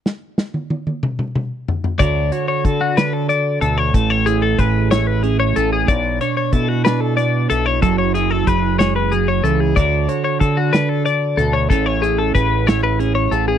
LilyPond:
<<
  \new Staff \with { instrumentName = "Clean electric guitar" } { \time 6/8 \key d \lydian \tempo 4. = 62 r2. | d''8 cis''16 cis''16 a'16 fis'16 b'16 a'16 d''8 a'16 cis''16 | a'16 cis''16 gis'16 a'16 b'8 cis''16 b'16 gis'16 cis''16 a'16 gis'16 | d''8 cis''16 cis''16 a'16 fis'16 b'16 a'16 d''8 a'16 cis''16 |
a'16 cis''16 gis'16 a'16 b'8 cis''16 b'16 gis'16 cis''16 a'16 gis'16 | d''8 cis''16 cis''16 a'16 fis'16 b'16 a'16 d''8 a'16 cis''16 | a'16 cis''16 gis'16 a'16 b'8 cis''16 b'16 gis'16 cis''16 a'16 gis'16 | }
  \new Staff \with { instrumentName = "Clean electric guitar" } { \time 6/8 \key d \lydian << { r2. | <fis' a' cis''>8 fis'8 a'2 | r8 e'8 gis'8 e'4 gis'8 | r8 d'8 e'8 d'4 e'8~ |
e'8 e'8 gis'2 | <fis' a' cis''>8 fis'8 a'2 | <cis' e' gis' cis''>8 e'8 gis'8 e'4 gis'8 | } \\ { r2. | d4. d8 r8 b,8 | a,2 cis'4 | b,2 b4 |
fis4. gis8 fis8 e8 | d4. d8 r8 b,8 | a,2 cis'4 | } >> }
  \new Staff \with { instrumentName = "Fingered electric bass" } { \clef bass \time 6/8 \key d \lydian r2. | d,8 r8 d4. d,8 | a,,4 a,,4. a,,8 | b,,8 r8 b,4. b,,8 |
fis,,4 fis,,4. cis,8 | d,8 r8 d4. d,8 | a,,4 a,,4. a,,8 | }
  \new DrumStaff \with { instrumentName = "Drums" } \drummode { \time 6/8 sn8 sn16 tommh16 tommh16 tommh16 toml16 toml16 toml8 tomfh16 tomfh16 | <hh bd>8 hh8 <hh bd>8 <hh sn>8 hh8 hh8 | <hh bd>8 hh8 <hh bd>8 <hh sn>8 hh8 hh8 | <hh bd>8 hh8 <hh bd>8 <hh sn>8 hh8 hh8 |
<hh bd>8 hh8 <hh bd>8 <hh sn>8 hh8 hh8 | <hh bd>8 hh8 <hh bd>8 <hh sn>8 hh8 hh8 | <hh bd>8 hh8 <hh bd>8 <hh sn>8 hh8 hh8 | }
>>